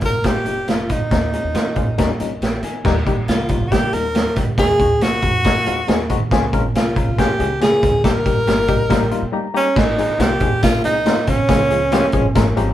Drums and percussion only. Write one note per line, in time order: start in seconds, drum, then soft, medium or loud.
0.01 kick medium
0.01 closed hi-hat medium
0.24 kick medium
0.24 snare loud
0.24 closed hi-hat medium
0.46 closed hi-hat medium
0.68 snare loud
0.68 closed hi-hat medium
0.89 kick medium
0.89 closed hi-hat medium
1.11 kick loud
1.11 snare loud
1.11 closed hi-hat medium
1.33 closed hi-hat medium
1.55 snare loud
1.55 closed hi-hat medium
1.75 kick medium
1.75 closed hi-hat medium
1.98 kick medium
1.98 snare loud
1.98 closed hi-hat medium
2.20 closed hi-hat medium
2.42 snare medium
2.42 closed hi-hat medium
2.63 closed hi-hat medium
2.85 kick loud
2.85 snare loud
2.85 crash medium
3.07 kick medium
3.07 closed hi-hat medium
3.28 snare loud
3.28 closed hi-hat medium
3.49 kick medium
3.49 closed hi-hat medium
3.72 kick medium
3.72 snare loud
3.72 closed hi-hat medium
3.93 closed hi-hat medium
4.15 snare loud
4.15 closed hi-hat medium
4.36 kick medium
4.36 snare soft
4.36 closed hi-hat medium
4.58 kick loud
4.58 snare loud
4.58 closed hi-hat medium
4.80 kick medium
4.80 closed hi-hat medium
5.01 snare loud
5.01 closed hi-hat medium
5.22 kick medium
5.22 closed hi-hat medium
5.44 kick loud
5.44 snare loud
5.44 closed hi-hat loud
5.66 closed hi-hat medium
5.88 snare loud
5.88 closed hi-hat medium
6.09 kick medium
6.09 closed hi-hat medium
6.31 kick loud
6.31 snare loud
6.31 closed hi-hat medium
6.53 kick medium
6.53 closed hi-hat medium
6.75 snare loud
6.75 closed hi-hat medium
6.96 kick medium
6.96 closed hi-hat medium
7.18 kick medium
7.18 snare loud
7.18 closed hi-hat loud
7.40 closed hi-hat medium
7.61 snare loud
7.61 closed hi-hat medium
7.83 kick medium
7.83 snare soft
7.83 closed hi-hat medium
8.04 kick loud
8.04 snare loud
8.04 closed hi-hat medium
8.26 kick medium
8.26 closed hi-hat medium
8.47 snare loud
8.47 closed hi-hat medium
8.68 kick medium
8.68 closed hi-hat medium
8.90 kick medium
8.90 snare loud
8.90 closed hi-hat medium
9.11 closed hi-hat medium
9.76 kick loud
9.76 snare loud
9.76 crash medium
9.98 closed hi-hat medium
10.20 snare loud
10.20 closed hi-hat medium
10.40 kick medium
10.40 closed hi-hat medium
10.62 kick loud
10.62 snare loud
10.62 closed hi-hat loud
10.84 closed hi-hat medium
11.06 snare loud
11.06 closed hi-hat medium
11.27 kick medium
11.27 closed hi-hat medium
11.49 kick loud
11.49 snare loud
11.49 closed hi-hat medium
11.70 closed hi-hat medium
11.92 snare loud
11.92 closed hi-hat medium
12.12 kick medium
12.12 closed hi-hat medium
12.35 kick loud
12.35 snare loud
12.35 closed hi-hat loud
12.57 closed hi-hat medium